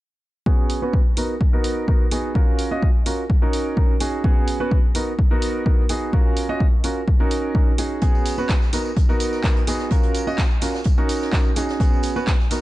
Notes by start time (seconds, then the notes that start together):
0.46 B3 C#4 F#4 G#4, kick
0.70 open hi-hat
0.82 B3 C#4 F#4 B4
0.93 kick
1.17 B3 D#4 F#4 A#4, open hi-hat
1.41 kick
1.53 B3 D#4 F#4 A#4
1.64 open hi-hat
1.88 B3 D#4 F#4 A#4, kick
2.11 B3 D#4 F#4 G#4, open hi-hat
2.35 C#4 F4 F#4 A#4, kick
2.59 open hi-hat
2.71 C#4 F4 F#4 D#5
2.82 kick
3.06 C#4 F4 F#4 A#4, open hi-hat
3.30 kick
3.42 C#4 D#4 F#4 A#4
3.53 open hi-hat
3.77 C#4 D#4 F#4 A#4, kick
4.00 C#4 D#4 F#4 G#4, open hi-hat
4.24 B3 C#4 F#4 G#4, kick
4.48 open hi-hat
4.60 B3 C#4 F#4 B4
4.71 kick
4.95 B3 D#4 F#4 A#4, open hi-hat
5.19 kick
5.31 B3 D#4 F#4 A#4
5.42 open hi-hat
5.66 B3 D#4 F#4 A#4, kick
5.89 B3 D#4 F#4 G#4, open hi-hat
6.13 C#4 F4 F#4 A#4, kick
6.37 open hi-hat
6.49 C#4 F4 F#4 D#5
6.60 kick
6.84 C#4 F4 F#4 A#4, open hi-hat
7.08 kick
7.20 C#4 D#4 F#4 A#4
7.31 open hi-hat
7.55 C#4 D#4 F#4 A#4, kick
7.78 C#4 D#4 F#4 G#4, open hi-hat
8.01 B3 C#4 F#4 G#4, kick, closed hi-hat, tambourine
8.15 tambourine
8.26 closed hi-hat, open hi-hat, tambourine
8.38 B3 C#4 F#4 B4, tambourine
8.49 kick, snare, clap, closed hi-hat, tambourine
8.62 snare, tambourine
8.73 B3 D#4 F#4 A#4, snare, closed hi-hat, open hi-hat, tambourine
8.85 tambourine
8.96 kick, closed hi-hat, tambourine
9.09 B3 D#4 F#4 A#4, tambourine
9.20 closed hi-hat, open hi-hat, tambourine
9.33 snare, tambourine
9.44 B3 D#4 F#4 A#4, kick, snare, clap, closed hi-hat, tambourine
9.56 closed hi-hat, tambourine
9.67 B3 D#4 F#4 G#4, closed hi-hat, open hi-hat, tambourine
9.79 snare, tambourine
9.91 C#4 F4 F#4 A#4, kick, closed hi-hat, tambourine
10.03 closed hi-hat, tambourine
10.15 closed hi-hat, open hi-hat, tambourine
10.27 C#4 F4 F#4 D#5, tambourine
10.38 kick, snare, clap, closed hi-hat, tambourine
10.51 tambourine
10.61 C#4 F4 F#4 A#4, closed hi-hat, open hi-hat, tambourine
10.74 snare, tambourine
10.84 kick, closed hi-hat, tambourine
10.98 C#4 D#4 F#4 A#4, tambourine
11.09 closed hi-hat, open hi-hat, tambourine
11.21 snare, tambourine
11.33 C#4 D#4 F#4 A#4, kick, snare, clap, closed hi-hat, tambourine
11.45 tambourine
11.56 C#4 D#4 F#4 G#4, closed hi-hat, open hi-hat, tambourine
11.69 snare, tambourine
11.80 B3 C#4 F#4 G#4, kick, closed hi-hat, tambourine
11.93 tambourine
12.03 closed hi-hat, open hi-hat, tambourine
12.16 B3 C#4 F#4 B4, tambourine
12.27 kick, snare, clap, closed hi-hat, tambourine
12.40 snare, tambourine
12.50 B3 D#4 F#4 A#4, snare, closed hi-hat, open hi-hat, tambourine